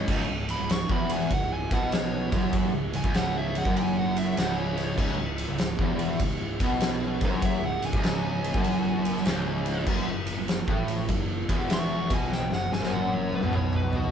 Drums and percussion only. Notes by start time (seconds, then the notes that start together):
0.08 kick, crash
0.49 ride
0.69 snare, ride
0.90 kick
1.10 ride
1.31 kick, ride
1.71 kick, ride
1.92 snare, ride
2.32 kick, ride
2.53 kick, ride
2.93 ride
3.04 kick
3.14 snare, ride
3.55 ride
3.65 kick
3.77 ride
4.16 ride
4.37 snare, ride
4.77 snare, ride
4.98 kick, crash
5.38 ride
5.58 snare, ride
5.79 kick
5.99 ride
6.19 kick, ride
6.60 kick, ride
6.80 snare, ride
7.21 kick, ride
7.42 kick, ride
7.82 ride
7.93 kick
8.04 snare, ride
8.44 ride
8.54 kick
8.64 ride
9.05 ride
9.17 snare
9.26 snare, ride
9.66 ride
9.87 kick, crash
10.27 ride
10.48 snare, ride
10.68 kick
10.88 ride
11.09 kick, ride
11.49 kick, ride
11.70 snare, ride
12.10 kick, ride
12.32 snare
12.52 snare
12.73 snare
12.83 snare
12.93 high tom
13.13 high tom
13.33 high tom
13.43 mid tom
13.53 mid tom
13.73 mid tom
13.93 mid tom
14.04 mid tom